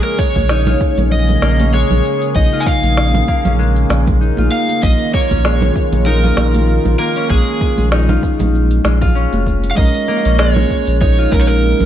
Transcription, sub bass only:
0, 0, Header, 1, 2, 480
1, 0, Start_track
1, 0, Key_signature, -5, "minor"
1, 0, Tempo, 618557
1, 1827, Time_signature, 4, 2, 24, 8
1, 9200, End_track
2, 0, Start_track
2, 0, Title_t, "Sub bass"
2, 0, Program_c, 0, 38
2, 280, Note_on_c, 0, 34, 87
2, 587, Note_off_c, 0, 34, 0
2, 758, Note_on_c, 0, 34, 93
2, 1067, Note_off_c, 0, 34, 0
2, 1104, Note_on_c, 0, 34, 81
2, 1429, Note_off_c, 0, 34, 0
2, 1479, Note_on_c, 0, 34, 94
2, 1562, Note_off_c, 0, 34, 0
2, 1827, Note_on_c, 0, 34, 95
2, 1929, Note_off_c, 0, 34, 0
2, 2199, Note_on_c, 0, 34, 86
2, 2507, Note_off_c, 0, 34, 0
2, 2682, Note_on_c, 0, 34, 93
2, 2988, Note_off_c, 0, 34, 0
2, 3028, Note_on_c, 0, 34, 78
2, 3351, Note_off_c, 0, 34, 0
2, 3401, Note_on_c, 0, 34, 95
2, 3483, Note_off_c, 0, 34, 0
2, 3749, Note_on_c, 0, 34, 85
2, 3850, Note_off_c, 0, 34, 0
2, 4122, Note_on_c, 0, 34, 97
2, 4429, Note_off_c, 0, 34, 0
2, 4599, Note_on_c, 0, 34, 100
2, 4907, Note_off_c, 0, 34, 0
2, 4945, Note_on_c, 0, 34, 78
2, 5270, Note_off_c, 0, 34, 0
2, 5319, Note_on_c, 0, 34, 92
2, 5402, Note_off_c, 0, 34, 0
2, 5666, Note_on_c, 0, 34, 86
2, 5769, Note_off_c, 0, 34, 0
2, 6040, Note_on_c, 0, 34, 98
2, 6348, Note_off_c, 0, 34, 0
2, 6521, Note_on_c, 0, 34, 90
2, 6828, Note_off_c, 0, 34, 0
2, 6868, Note_on_c, 0, 34, 76
2, 7191, Note_off_c, 0, 34, 0
2, 7240, Note_on_c, 0, 29, 93
2, 7547, Note_off_c, 0, 29, 0
2, 7587, Note_on_c, 0, 34, 92
2, 7689, Note_off_c, 0, 34, 0
2, 7959, Note_on_c, 0, 34, 92
2, 8267, Note_off_c, 0, 34, 0
2, 8439, Note_on_c, 0, 34, 100
2, 8747, Note_off_c, 0, 34, 0
2, 8786, Note_on_c, 0, 34, 78
2, 9111, Note_off_c, 0, 34, 0
2, 9160, Note_on_c, 0, 34, 96
2, 9200, Note_off_c, 0, 34, 0
2, 9200, End_track
0, 0, End_of_file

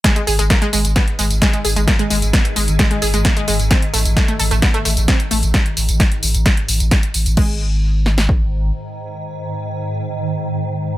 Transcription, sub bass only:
0, 0, Header, 1, 2, 480
1, 0, Start_track
1, 0, Tempo, 458015
1, 46, Time_signature, 4, 2, 24, 8
1, 11505, End_track
2, 0, Start_track
2, 0, Title_t, "Sub bass"
2, 0, Program_c, 0, 38
2, 286, Note_on_c, 0, 32, 98
2, 403, Note_off_c, 0, 32, 0
2, 409, Note_on_c, 0, 32, 84
2, 524, Note_off_c, 0, 32, 0
2, 766, Note_on_c, 0, 32, 101
2, 882, Note_off_c, 0, 32, 0
2, 888, Note_on_c, 0, 32, 82
2, 1003, Note_off_c, 0, 32, 0
2, 1246, Note_on_c, 0, 32, 104
2, 1361, Note_off_c, 0, 32, 0
2, 1368, Note_on_c, 0, 32, 83
2, 1483, Note_off_c, 0, 32, 0
2, 1724, Note_on_c, 0, 32, 99
2, 1842, Note_off_c, 0, 32, 0
2, 1848, Note_on_c, 0, 32, 83
2, 1963, Note_off_c, 0, 32, 0
2, 2206, Note_on_c, 0, 32, 102
2, 2323, Note_off_c, 0, 32, 0
2, 2329, Note_on_c, 0, 32, 81
2, 2444, Note_off_c, 0, 32, 0
2, 2686, Note_on_c, 0, 32, 98
2, 2803, Note_off_c, 0, 32, 0
2, 2809, Note_on_c, 0, 32, 85
2, 2924, Note_off_c, 0, 32, 0
2, 3166, Note_on_c, 0, 32, 100
2, 3283, Note_off_c, 0, 32, 0
2, 3289, Note_on_c, 0, 32, 82
2, 3404, Note_off_c, 0, 32, 0
2, 3646, Note_on_c, 0, 32, 96
2, 3763, Note_off_c, 0, 32, 0
2, 3769, Note_on_c, 0, 32, 84
2, 3884, Note_off_c, 0, 32, 0
2, 4126, Note_on_c, 0, 33, 103
2, 4243, Note_off_c, 0, 33, 0
2, 4249, Note_on_c, 0, 33, 83
2, 4364, Note_off_c, 0, 33, 0
2, 4607, Note_on_c, 0, 33, 101
2, 4723, Note_off_c, 0, 33, 0
2, 4730, Note_on_c, 0, 33, 86
2, 4844, Note_off_c, 0, 33, 0
2, 5086, Note_on_c, 0, 33, 103
2, 5203, Note_off_c, 0, 33, 0
2, 5210, Note_on_c, 0, 33, 81
2, 5324, Note_off_c, 0, 33, 0
2, 5568, Note_on_c, 0, 33, 98
2, 5684, Note_off_c, 0, 33, 0
2, 5690, Note_on_c, 0, 33, 81
2, 5804, Note_off_c, 0, 33, 0
2, 6047, Note_on_c, 0, 33, 98
2, 6164, Note_off_c, 0, 33, 0
2, 6170, Note_on_c, 0, 33, 83
2, 6284, Note_off_c, 0, 33, 0
2, 6526, Note_on_c, 0, 33, 101
2, 6643, Note_off_c, 0, 33, 0
2, 6650, Note_on_c, 0, 33, 87
2, 6764, Note_off_c, 0, 33, 0
2, 7005, Note_on_c, 0, 33, 101
2, 7123, Note_off_c, 0, 33, 0
2, 7129, Note_on_c, 0, 33, 81
2, 7244, Note_off_c, 0, 33, 0
2, 7487, Note_on_c, 0, 33, 102
2, 7603, Note_off_c, 0, 33, 0
2, 7610, Note_on_c, 0, 33, 83
2, 7721, Note_off_c, 0, 33, 0
2, 7727, Note_on_c, 0, 32, 98
2, 9125, Note_off_c, 0, 32, 0
2, 11505, End_track
0, 0, End_of_file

